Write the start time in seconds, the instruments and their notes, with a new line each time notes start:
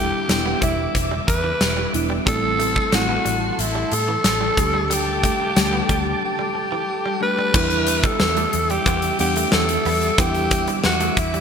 Already playing: fingered electric bass E1, fm electric piano G3 B3 D4 E4, string machine G3 E5 D6, alto saxophone G4
0.12 muted clean electric guitar stroke
0.28 fingered electric bass E1, fm electric piano G3 B3 D4 E4, muted clean electric guitar stroke, snare, closed hi-hat
0.46 clean electric guitar B3
0.61 fingered electric bass E1, clean electric guitar G3, alto saxophone E4, kick, closed hi-hat
0.95 fingered electric bass E1, kick, closed hi-hat
1.11 clean electric guitar G3
1.27 fingered electric bass E2, alto saxophone B4, muted clean electric guitar stroke, kick, closed hi-hat
1.44 clean electric guitar E3
1.61 fingered electric bass E1, snare, closed hi-hat
1.77 clean electric guitar G3
1.93 fingered electric bass E1, fm electric piano G3 B3 D4 E4, muted clean electric guitar stroke, closed hi-hat
2.10 clean electric guitar G3
2.26 fingered electric bass A1, fm electric piano G3 A3 C4 E4, clean electric guitar G3, string machine A4 A5 C6, alto saxophone A4, kick, closed hi-hat
2.59 clean electric guitar A3, closed hi-hat
2.76 muted clean electric guitar stroke, kick
2.92 fingered electric bass A1, fm electric piano G3 A3 C4 E4, alto saxophone F#4, muted clean electric guitar stroke, snare, closed hi-hat
3.09 clean electric guitar B3
3.25 fingered electric bass A1, clean electric guitar G3, closed hi-hat
3.52 alto saxophone F#4
3.58 fingered electric bass A1, alto saxophone E4, closed hi-hat
3.75 clean electric guitar G3
3.92 fingered electric bass A2, alto saxophone A4, muted clean electric guitar stroke, closed hi-hat
4.08 clean electric guitar E3
4.24 fingered electric bass A1, snare, closed hi-hat
4.41 clean electric guitar G3
4.57 fingered electric bass D2, fm electric piano G3 A3 D4 G4, string machine D6, muted clean electric guitar stroke, kick, closed hi-hat
4.74 clean electric guitar G3
4.90 clean electric guitar G3, alto saxophone G4, closed hi-hat
5.23 clean electric guitar A3, kick, closed hi-hat
5.40 muted clean electric guitar stroke
5.56 fingered electric bass D2, fm electric piano G3 A3 D4 G4, muted clean electric guitar stroke, snare, closed hi-hat
5.73 clean electric guitar B3
5.89 fingered electric bass D2, clean electric guitar G3, kick, closed hi-hat
6.25 alto saxophone G4
6.39 clean electric guitar G3
6.55 muted clean electric guitar stroke
6.72 clean electric guitar E3
7.06 clean electric guitar G3
7.21 fm electric piano G3 A3 D4 G4, alto saxophone B4, muted clean electric guitar stroke
7.39 clean electric guitar G3
7.54 fingered electric bass E2, clean electric guitar E3, fm electric piano G3 B3 D4 E4, string machine G3 E5 D6, kick, crash, cowbell
7.70 closed hi-hat
7.87 muted clean electric guitar stroke, closed hi-hat
8.03 clean electric guitar G3, alto saxophone A4, kick, closed hi-hat
8.20 fingered electric bass E2, snare, cowbell
8.37 clean electric guitar A3, closed hi-hat
8.53 fingered electric bass E2, muted clean electric guitar stroke, closed hi-hat
8.70 clean electric guitar G3, alto saxophone G4, closed hi-hat
8.86 fingered electric bass E2, clean electric guitar B3, kick, closed hi-hat, cowbell
9.02 closed hi-hat
9.19 fingered electric bass E2, fm electric piano G3 B3 D4 F#5, alto saxophone G4, muted clean electric guitar stroke, closed hi-hat
9.36 clean electric guitar A3, closed hi-hat
9.52 fingered electric bass E2, alto saxophone A4, snare, cowbell
9.69 closed hi-hat
9.85 fingered electric bass E2, clean electric guitar B3, open hi-hat
10.02 closed hi-hat
10.18 fingered electric bass E2, clean electric guitar E3, fm electric piano G3 B3 D4 E4, alto saxophone G4, kick, closed hi-hat, cowbell
10.35 closed hi-hat
10.51 muted clean electric guitar stroke, kick, closed hi-hat
10.67 clean electric guitar G3, closed hi-hat
10.84 fingered electric bass E2, alto saxophone F#4, snare, cowbell
11.00 clean electric guitar A3, closed hi-hat
11.17 fingered electric bass E2, alto saxophone E4, muted clean electric guitar stroke, kick, closed hi-hat
11.34 clean electric guitar G3, closed hi-hat